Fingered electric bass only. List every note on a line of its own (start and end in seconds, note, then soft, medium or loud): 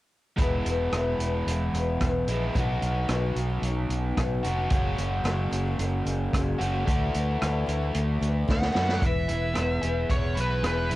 0.38 0.61 E1 medium
0.66 0.88 E1 medium
0.92 1.15 E1 medium
1.19 1.42 E1 medium
1.47 1.69 E1 medium
1.73 1.96 E1 medium
2.01 2.24 E1 medium
2.27 2.50 A#1 medium
2.55 2.78 B1 medium
2.82 3.04 B1 medium
3.09 3.32 B1 medium
3.36 3.58 B1 medium
3.62 3.85 B1 medium
3.89 4.12 B1 medium
4.17 4.40 B1 medium
4.45 4.67 F1 medium
4.71 4.94 F#1 medium
4.98 5.21 F#1 medium
5.24 5.47 F#1 medium
5.52 5.74 F#1 medium
5.79 6.01 F#1 medium
6.05 6.28 F#1 medium
6.33 6.55 F#1 medium
6.60 6.83 F#1 medium
6.88 7.10 D2 medium
7.15 7.37 D2 medium
7.42 7.64 D2 medium
7.68 7.90 D2 medium
7.95 8.17 D2 medium
8.21 8.44 D2 medium
8.49 8.71 D2 medium
8.76 8.98 F#2 medium
9.02 9.28 E1 medium
9.30 9.55 E1 medium
9.57 9.82 E1 medium
9.83 10.09 E1 medium
10.10 10.36 E1 medium
10.37 10.62 B1 medium
10.63 10.89 E1 medium
10.91 10.96 A#1 medium